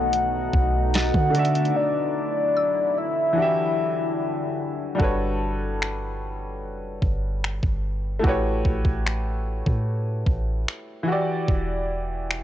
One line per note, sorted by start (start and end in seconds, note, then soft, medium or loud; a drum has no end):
0.00 0.50 B1 loud
0.00 1.28 B2 medium
0.00 1.32 B2 medium
0.00 1.31 A3 medium
0.00 1.30 B3 medium
0.00 1.32 D#4 medium
0.00 1.33 D#4 medium
0.00 1.31 A4 medium
0.00 1.32 C#5 medium
0.00 0.94 F#5 loud
0.13 closed hi-hat medium
0.53 1.12 B1 loud
0.53 kick loud
0.94 1.78 F#5 loud
0.94 1.72 A6 medium
0.94 snare loud
0.94 closed hi-hat medium
1.14 1.73 D3 loud
1.14 kick medium
1.30 3.31 D3 medium
1.30 3.32 D4 medium
1.34 3.35 D3 medium
1.34 3.35 F#3 medium
1.34 4.96 E4 medium
1.34 3.33 F#4 medium
1.34 3.35 D5 medium
1.34 closed hi-hat medium
1.39 3.36 E5 medium
1.45 closed hi-hat soft
1.55 closed hi-hat soft
1.65 closed hi-hat soft
1.76 3.00 D5 loud
2.57 3.74 E6 medium
2.98 4.60 E5 medium
3.33 4.94 E3 medium
3.33 4.95 D4 medium
3.37 4.98 D3 medium
3.37 4.98 G3 medium
3.37 4.96 F#4 medium
3.37 4.98 G4 medium
3.42 4.99 E5 medium
4.95 8.18 G3 medium
4.95 8.18 D4 medium
4.95 8.19 F#4 medium
5.00 6.64 G1 loud
5.00 8.20 A4 medium
5.00 8.21 B4 medium
5.00 kick loud
5.04 8.22 C#5 medium
5.82 finger snap loud
6.62 7.00 F#1 loud
7.02 7.61 G1 loud
7.02 kick medium
7.44 finger snap loud
7.63 8.21 G1 medium
7.63 kick medium
8.19 11.01 A3 medium
8.19 11.02 E4 medium
8.19 11.03 F#4 medium
8.24 8.63 A1 loud
8.24 11.04 G4 medium
8.24 11.05 B4 medium
8.24 kick loud
8.29 11.06 C#5 medium
8.65 8.84 A1 loud
8.65 kick medium
8.85 9.63 A1 medium
8.85 kick medium
9.06 finger snap loud
9.66 10.25 A2 loud
9.66 kick medium
10.26 10.66 A1 loud
10.26 kick medium
10.68 finger snap loud
11.03 12.43 E3 medium
11.03 12.43 E4 medium
11.08 12.43 F#4 medium
11.08 12.43 G4 medium
11.12 12.43 D5 medium
11.48 12.43 E1 loud
11.48 kick loud
12.31 finger snap loud